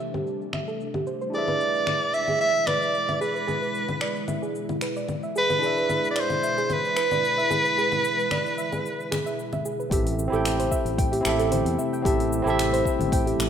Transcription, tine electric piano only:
0, 0, Header, 1, 2, 480
1, 0, Start_track
1, 0, Key_signature, 0, "minor"
1, 0, Tempo, 535714
1, 1198, Time_signature, 4, 2, 24, 8
1, 12092, End_track
2, 0, Start_track
2, 0, Title_t, "Tine electric piano"
2, 0, Program_c, 0, 4
2, 0, Control_c, 0, 64, 127
2, 0, Note_on_c, 0, 60, 57
2, 0, Note_on_c, 0, 64, 59
2, 0, Note_on_c, 0, 67, 55
2, 0, Note_on_c, 0, 69, 55
2, 0, Note_on_c, 0, 76, 67
2, 1151, Note_off_c, 0, 60, 0
2, 1160, Note_off_c, 0, 64, 0
2, 1165, Note_on_c, 0, 62, 58
2, 1169, Note_off_c, 0, 67, 0
2, 1176, Note_off_c, 0, 69, 0
2, 1183, Note_on_c, 0, 64, 53
2, 1186, Note_off_c, 0, 76, 0
2, 1200, Note_on_c, 0, 68, 55
2, 1211, Control_c, 0, 64, 0
2, 1220, Note_on_c, 0, 71, 54
2, 1237, Note_on_c, 0, 76, 66
2, 1383, Control_c, 0, 64, 127
2, 4994, Note_off_c, 0, 62, 0
2, 5003, Note_off_c, 0, 64, 0
2, 5006, Note_on_c, 0, 62, 61
2, 5012, Note_off_c, 0, 68, 0
2, 5021, Note_on_c, 0, 64, 54
2, 5022, Note_off_c, 0, 71, 0
2, 5031, Note_off_c, 0, 76, 0
2, 5037, Note_on_c, 0, 68, 54
2, 5056, Note_on_c, 0, 74, 60
2, 5074, Note_on_c, 0, 76, 72
2, 8835, Note_off_c, 0, 62, 0
2, 8842, Note_off_c, 0, 64, 0
2, 8851, Note_off_c, 0, 68, 0
2, 8860, Note_off_c, 0, 74, 0
2, 8869, Note_off_c, 0, 76, 0
2, 8869, Note_on_c, 0, 60, 65
2, 8878, Note_on_c, 0, 64, 59
2, 8885, Note_on_c, 0, 67, 58
2, 8889, Control_c, 0, 64, 0
2, 8894, Note_on_c, 0, 69, 60
2, 8901, Note_on_c, 0, 76, 71
2, 9033, Control_c, 0, 64, 127
2, 9199, Note_off_c, 0, 60, 0
2, 9210, Note_on_c, 0, 60, 86
2, 9215, Note_off_c, 0, 64, 0
2, 9219, Note_off_c, 0, 67, 0
2, 9223, Note_off_c, 0, 69, 0
2, 9227, Note_off_c, 0, 76, 0
2, 9230, Note_on_c, 0, 64, 84
2, 9247, Note_on_c, 0, 67, 81
2, 9262, Note_on_c, 0, 69, 77
2, 9280, Note_on_c, 0, 79, 94
2, 10033, Note_off_c, 0, 60, 0
2, 10042, Note_on_c, 0, 60, 84
2, 10043, Note_off_c, 0, 64, 0
2, 10052, Note_off_c, 0, 67, 0
2, 10059, Note_off_c, 0, 69, 0
2, 10060, Note_on_c, 0, 64, 72
2, 10068, Note_off_c, 0, 79, 0
2, 10078, Note_on_c, 0, 67, 73
2, 10095, Note_on_c, 0, 69, 78
2, 10114, Note_on_c, 0, 76, 94
2, 10753, Note_off_c, 0, 60, 0
2, 10762, Note_off_c, 0, 64, 0
2, 10771, Note_off_c, 0, 67, 0
2, 10774, Note_on_c, 0, 60, 78
2, 10779, Note_off_c, 0, 69, 0
2, 10786, Note_on_c, 0, 64, 72
2, 10789, Note_off_c, 0, 76, 0
2, 10797, Note_on_c, 0, 67, 71
2, 10802, Note_on_c, 0, 69, 75
2, 10812, Note_on_c, 0, 76, 82
2, 11119, Note_off_c, 0, 60, 0
2, 11129, Note_off_c, 0, 64, 0
2, 11129, Note_on_c, 0, 60, 93
2, 11135, Note_off_c, 0, 67, 0
2, 11137, Note_off_c, 0, 69, 0
2, 11142, Note_off_c, 0, 76, 0
2, 11145, Note_on_c, 0, 64, 89
2, 11163, Note_on_c, 0, 67, 84
2, 11180, Note_on_c, 0, 69, 85
2, 11200, Note_on_c, 0, 76, 110
2, 12092, Note_off_c, 0, 60, 0
2, 12092, Note_off_c, 0, 64, 0
2, 12092, Note_off_c, 0, 67, 0
2, 12092, Note_off_c, 0, 69, 0
2, 12092, Note_off_c, 0, 76, 0
2, 12092, End_track
0, 0, End_of_file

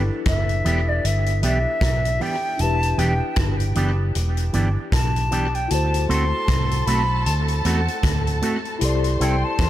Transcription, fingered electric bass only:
0, 0, Header, 1, 2, 480
1, 0, Start_track
1, 0, Key_signature, 1, "major"
1, 0, Tempo, 777202
1, 1601, Time_signature, 4, 2, 24, 8
1, 5989, End_track
2, 0, Start_track
2, 0, Title_t, "Fingered electric bass"
2, 0, Program_c, 0, 33
2, 163, Note_on_c, 0, 30, 91
2, 390, Note_off_c, 0, 30, 0
2, 406, Note_on_c, 0, 28, 100
2, 631, Note_off_c, 0, 28, 0
2, 646, Note_on_c, 0, 31, 88
2, 872, Note_off_c, 0, 31, 0
2, 884, Note_on_c, 0, 35, 87
2, 1018, Note_off_c, 0, 35, 0
2, 1121, Note_on_c, 0, 35, 82
2, 1349, Note_off_c, 0, 35, 0
2, 1603, Note_on_c, 0, 28, 104
2, 1830, Note_off_c, 0, 28, 0
2, 1843, Note_on_c, 0, 28, 107
2, 1977, Note_off_c, 0, 28, 0
2, 2082, Note_on_c, 0, 31, 93
2, 2310, Note_off_c, 0, 31, 0
2, 2327, Note_on_c, 0, 30, 104
2, 2552, Note_off_c, 0, 30, 0
2, 2568, Note_on_c, 0, 28, 102
2, 2793, Note_off_c, 0, 28, 0
2, 2806, Note_on_c, 0, 31, 91
2, 2939, Note_off_c, 0, 31, 0
2, 3042, Note_on_c, 0, 35, 84
2, 3498, Note_off_c, 0, 35, 0
2, 3527, Note_on_c, 0, 38, 91
2, 3753, Note_off_c, 0, 38, 0
2, 3767, Note_on_c, 0, 38, 100
2, 3900, Note_off_c, 0, 38, 0
2, 4006, Note_on_c, 0, 36, 105
2, 4232, Note_off_c, 0, 36, 0
2, 4244, Note_on_c, 0, 35, 107
2, 4471, Note_off_c, 0, 35, 0
2, 4485, Note_on_c, 0, 38, 106
2, 4711, Note_off_c, 0, 38, 0
2, 4726, Note_on_c, 0, 40, 100
2, 4859, Note_off_c, 0, 40, 0
2, 4964, Note_on_c, 0, 38, 83
2, 5191, Note_off_c, 0, 38, 0
2, 5445, Note_on_c, 0, 36, 98
2, 5671, Note_off_c, 0, 36, 0
2, 5685, Note_on_c, 0, 36, 107
2, 5818, Note_off_c, 0, 36, 0
2, 5924, Note_on_c, 0, 40, 94
2, 5989, Note_off_c, 0, 40, 0
2, 5989, End_track
0, 0, End_of_file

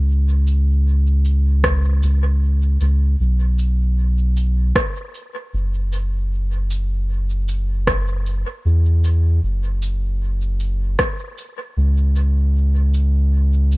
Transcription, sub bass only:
0, 0, Header, 1, 2, 480
1, 0, Start_track
1, 0, Tempo, 779221
1, 51, Time_signature, 4, 2, 24, 8
1, 8483, End_track
2, 0, Start_track
2, 0, Title_t, "Sub bass"
2, 0, Program_c, 0, 38
2, 0, Note_on_c, 0, 37, 96
2, 1245, Note_off_c, 0, 37, 0
2, 1249, Note_on_c, 0, 37, 86
2, 1710, Note_off_c, 0, 37, 0
2, 1729, Note_on_c, 0, 37, 94
2, 1944, Note_off_c, 0, 37, 0
2, 1970, Note_on_c, 0, 35, 101
2, 2910, Note_off_c, 0, 35, 0
2, 3409, Note_on_c, 0, 30, 95
2, 5199, Note_off_c, 0, 30, 0
2, 5329, Note_on_c, 0, 40, 101
2, 5790, Note_off_c, 0, 40, 0
2, 5810, Note_on_c, 0, 30, 99
2, 6750, Note_off_c, 0, 30, 0
2, 7250, Note_on_c, 0, 37, 94
2, 8483, Note_off_c, 0, 37, 0
2, 8483, End_track
0, 0, End_of_file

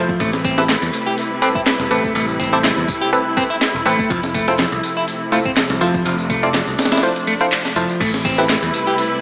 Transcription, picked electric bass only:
0, 0, Header, 1, 2, 480
1, 0, Start_track
1, 0, Key_signature, 0, "minor"
1, 0, Tempo, 487805
1, 198, Time_signature, 4, 2, 24, 8
1, 9067, End_track
2, 0, Start_track
2, 0, Title_t, "Picked electric bass"
2, 0, Program_c, 0, 34
2, 198, Note_on_c, 0, 33, 97
2, 733, Note_off_c, 0, 33, 0
2, 808, Note_on_c, 0, 40, 80
2, 878, Note_off_c, 0, 40, 0
2, 1767, Note_on_c, 0, 28, 96
2, 1838, Note_off_c, 0, 28, 0
2, 1877, Note_on_c, 0, 33, 78
2, 1961, Note_off_c, 0, 33, 0
2, 2119, Note_on_c, 0, 33, 100
2, 2654, Note_off_c, 0, 33, 0
2, 2728, Note_on_c, 0, 40, 83
2, 2798, Note_off_c, 0, 40, 0
2, 3687, Note_on_c, 0, 28, 95
2, 3758, Note_off_c, 0, 28, 0
2, 3797, Note_on_c, 0, 33, 79
2, 3881, Note_off_c, 0, 33, 0
2, 4036, Note_on_c, 0, 29, 102
2, 4573, Note_off_c, 0, 29, 0
2, 4647, Note_on_c, 0, 36, 81
2, 4718, Note_off_c, 0, 36, 0
2, 5609, Note_on_c, 0, 36, 97
2, 5679, Note_off_c, 0, 36, 0
2, 5718, Note_on_c, 0, 29, 77
2, 5801, Note_off_c, 0, 29, 0
2, 5959, Note_on_c, 0, 29, 107
2, 6494, Note_off_c, 0, 29, 0
2, 6568, Note_on_c, 0, 36, 80
2, 6638, Note_off_c, 0, 36, 0
2, 7637, Note_on_c, 0, 29, 83
2, 7721, Note_off_c, 0, 29, 0
2, 7878, Note_on_c, 0, 33, 106
2, 8413, Note_off_c, 0, 33, 0
2, 8490, Note_on_c, 0, 40, 83
2, 8559, Note_off_c, 0, 40, 0
2, 9067, End_track
0, 0, End_of_file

